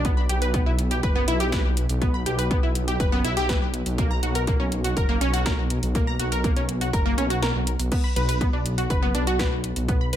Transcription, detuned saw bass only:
Already playing: B1
0.29 B1
0.67 B1
1.03 F#1
1.28 B1
1.65 B1
1.90 B1
2.26 B1
2.63 B1
3.00 F#1
3.24 B1
3.61 B1
3.86 B1
4.23 B1
4.60 B1
4.97 F#1
5.21 B1
5.58 B1
5.83 B1
6.20 B1
6.57 B1
6.93 F#1
7.18 B1
7.55 B1
7.80 B1
8.16 B1
8.53 B1
8.90 F#1
9.15 B1
9.52 B1
9.76 B1
10.13 B1

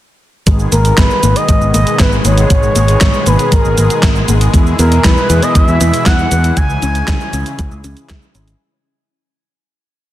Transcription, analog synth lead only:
0.72 A#4
0.98 B4
1.36 D#5
1.74 D#5
2.00 B4
2.25 C#5
3.27 B4
3.52 A#4
4.79 A#4
5.04 B4
5.42 D#5
5.55 E5
6.06 F#5
6.56 G#5

